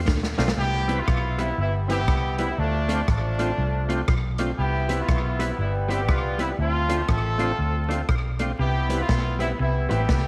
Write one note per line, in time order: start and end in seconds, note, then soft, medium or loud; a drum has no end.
0.08 0.34 D2 loud
0.08 0.26 D3 loud
0.08 kick loud
0.08 snare medium
0.23 snare medium
0.38 0.55 B1 medium
0.38 0.50 B2 medium
0.38 0.49 A3 loud
0.38 0.49 C4 medium
0.38 0.51 D4 medium
0.38 0.51 F4 medium
0.38 0.49 F4 loud
0.38 0.51 C5 loud
0.38 snare medium
0.48 snare loud
0.57 1.00 C2 loud
0.57 0.98 B3 medium
0.57 1.39 E4 medium
0.57 0.96 G4 loud
0.87 0.99 G3 medium
0.87 0.99 B3 medium
0.87 1.01 C4 medium
0.87 1.01 E4 medium
0.87 1.00 E4 medium
0.87 1.01 B4 loud
0.87 closed hi-hat loud
0.99 1.58 B3 medium
0.99 1.39 F4 loud
1.08 1.51 B1 medium
1.08 kick loud
1.08 cross-stick loud
1.38 1.49 G3 medium
1.38 1.49 B3 medium
1.38 1.51 C4 medium
1.38 1.51 E4 medium
1.38 1.50 E4 medium
1.38 1.59 E4 medium
1.38 1.51 B4 medium
1.38 closed hi-hat medium
1.58 2.08 G1 loud
1.58 2.55 G3 medium
1.58 1.88 B3 medium
1.58 1.74 E4 medium
1.88 2.00 G3 medium
1.88 2.55 B3 medium
1.88 2.00 B3 medium
1.88 2.01 C4 medium
1.88 2.01 E4 medium
1.88 2.40 E4 medium
1.88 2.00 E4 medium
1.88 2.36 G4 loud
1.88 2.02 B4 medium
1.88 closed hi-hat medium
2.08 2.51 C2 loud
2.08 2.14 E4 soft
2.08 2.14 B4 soft
2.08 kick loud
2.08 cross-stick loud
2.38 2.49 G3 medium
2.38 2.50 B3 medium
2.38 2.51 C4 medium
2.38 2.51 E4 medium
2.38 2.50 E4 medium
2.38 2.58 E4 medium
2.38 2.52 B4 loud
2.38 closed hi-hat medium
2.58 3.01 D2 loud
2.58 3.08 F3 medium
2.58 3.08 A3 medium
2.58 3.09 D4 loud
2.89 2.99 A3 medium
2.89 3.00 C4 medium
2.89 3.01 D4 medium
2.89 3.02 F4 medium
2.89 3.00 F4 medium
2.89 3.02 C5 loud
2.89 closed hi-hat loud
3.08 3.51 A1 medium
3.08 4.05 F3 medium
3.08 4.05 A3 medium
3.08 4.05 D4 medium
3.08 kick loud
3.08 cross-stick loud
3.38 3.50 A3 medium
3.38 3.50 C4 medium
3.38 3.51 D4 medium
3.38 3.52 F4 medium
3.38 3.50 F4 medium
3.38 3.52 C5 loud
3.38 closed hi-hat medium
3.58 4.01 C2 loud
3.88 3.99 A3 medium
3.88 4.00 C4 medium
3.88 4.01 D4 medium
3.88 4.02 F4 medium
3.88 4.00 F4 medium
3.88 4.02 C5 loud
3.88 closed hi-hat medium
4.08 4.51 B1 loud
4.08 4.15 F4 soft
4.08 4.15 C5 soft
4.08 kick loud
4.08 cross-stick loud
4.38 4.50 A3 medium
4.38 4.50 C4 loud
4.38 4.51 D4 medium
4.38 4.52 F4 medium
4.38 4.50 F4 medium
4.38 4.52 C5 loud
4.38 closed hi-hat medium
4.58 5.01 C2 medium
4.58 4.98 B3 medium
4.58 5.39 E4 medium
4.58 4.96 G4 medium
4.89 5.00 G3 medium
4.89 5.00 B3 medium
4.89 5.02 C4 medium
4.89 5.02 E4 medium
4.89 5.00 E4 medium
4.89 5.02 B4 medium
4.89 closed hi-hat loud
5.00 5.57 B3 medium
5.00 5.40 F4 medium
5.09 5.51 B1 medium
5.09 kick loud
5.09 cross-stick loud
5.39 5.50 G3 medium
5.39 5.50 B3 medium
5.39 5.52 C4 medium
5.39 5.52 E4 medium
5.39 5.58 E4 medium
5.39 5.50 E4 medium
5.39 5.52 B4 medium
5.39 closed hi-hat loud
5.58 6.09 G1 medium
5.58 6.55 G3 medium
5.58 6.55 B3 medium
5.58 5.73 E4 medium
5.88 5.99 G3 medium
5.88 6.00 B3 medium
5.88 6.02 C4 medium
5.88 6.00 E4 medium
5.88 6.02 E4 medium
5.88 6.08 G4 medium
5.88 6.02 B4 loud
5.88 closed hi-hat medium
6.09 6.51 C2 loud
6.09 6.15 E4 soft
6.09 6.38 F4 medium
6.09 6.15 B4 soft
6.09 kick loud
6.09 cross-stick loud
6.38 6.49 G3 medium
6.38 6.50 B3 medium
6.38 6.52 C4 medium
6.38 6.52 E4 medium
6.38 6.50 E4 medium
6.38 6.49 E4 medium
6.38 6.52 B4 loud
6.38 closed hi-hat medium
6.59 7.01 D2 loud
6.59 7.55 A3 medium
6.59 7.08 C4 medium
6.59 7.06 F4 loud
6.89 7.00 A3 medium
6.89 7.00 C4 medium
6.89 7.02 D4 medium
6.89 7.02 F4 medium
6.89 7.01 F4 medium
6.89 7.02 C5 loud
6.89 closed hi-hat loud
7.09 7.51 A1 medium
7.09 8.05 C4 medium
7.09 8.05 F4 medium
7.09 8.09 A4 loud
7.09 kick loud
7.09 cross-stick loud
7.38 7.49 A3 medium
7.38 7.50 C4 medium
7.38 7.52 D4 medium
7.38 7.52 F4 medium
7.38 7.50 F4 loud
7.38 7.52 C5 medium
7.38 closed hi-hat medium
7.59 8.01 D2 medium
7.89 8.00 A3 medium
7.89 8.00 C4 medium
7.89 8.02 D4 medium
7.89 8.02 F4 medium
7.89 8.01 F4 medium
7.89 8.02 C5 medium
7.89 closed hi-hat medium
8.09 8.52 B1 medium
8.09 8.15 F4 soft
8.09 8.15 C5 soft
8.09 kick loud
8.09 cross-stick loud
8.39 8.50 A3 medium
8.39 8.51 C4 medium
8.39 8.52 D4 medium
8.39 8.52 F4 medium
8.39 8.51 F4 medium
8.39 8.53 C5 loud
8.39 closed hi-hat medium
8.59 9.02 C2 loud
8.59 8.78 C3 medium
8.59 8.99 B3 medium
8.59 9.39 E4 medium
8.59 8.97 G4 loud
8.89 9.00 G3 medium
8.89 9.01 B3 medium
8.89 9.02 C4 medium
8.89 9.02 E4 medium
8.89 9.01 E4 medium
8.89 9.02 B4 medium
8.89 closed hi-hat loud
9.00 9.58 B3 medium
9.00 9.37 F4 medium
9.09 9.52 B1 loud
9.09 9.28 B2 medium
9.09 kick loud
9.09 snare loud
9.39 9.50 G3 medium
9.39 9.51 B3 medium
9.39 9.52 C4 medium
9.39 9.52 E4 medium
9.39 9.51 E4 medium
9.39 9.49 E4 medium
9.39 9.53 B4 loud
9.39 closed hi-hat medium
9.59 9.86 C2 medium
9.59 9.78 C3 medium
9.59 10.28 G3 medium
9.59 9.89 B3 medium
9.59 9.88 E4 medium
9.89 10.07 A1 medium
9.89 10.02 A2 medium
9.89 10.00 G3 medium
9.89 10.00 B3 medium
9.89 10.28 B3 medium
9.89 10.02 C4 medium
9.89 10.02 E4 medium
9.89 10.28 E4 medium
9.89 10.01 E4 medium
9.89 10.28 G4 loud
9.89 10.03 B4 medium
9.89 closed hi-hat medium
10.09 10.28 C2 loud
10.09 10.28 C3 medium
10.09 10.15 E4 soft
10.09 10.15 B4 soft
10.09 kick loud
10.09 snare loud